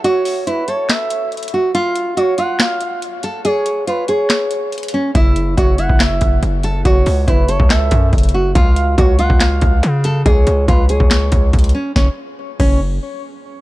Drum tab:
CC |--------------------------------|--------------------------------|--------------------------------|--------------------------------|
HH |x---o---x---x---x---x---xxxx----|x---x---x---x---x---x---x---x---|x---x---x---x---x---x---xxxx----|x---x---x---x---x---x---x---x---|
CP |----------------x---------------|----------------x---------------|----------------x---------------|----------------x---------------|
SD |----------------o---------------|----------------o---------------|----------------o---------------|----------------o---------------|
BD |--------------------------------|--------------------------------|--------------------------------|o-------o-----o-----o-----------|

CC |--------------------------------|--------------------------------|--------------------------------|------------x-------------------|
HH |x---o---x---x---x---x---xxxx----|x---x---x---x---x---x---x---x---|x---x---x---x---x---x---xxxx----|--------------------------------|
CP |----------------x---------------|----------------x---------------|----------------x---------------|--------------------------------|
SD |----------------o---------------|----------------o---------------|----------------o---------------|o-------------------------------|
BD |o-------o-----o-----o---o-------|o-------o-----o-----o-----------|o-------o-----o-----o---o-------|o-----------o-------------------|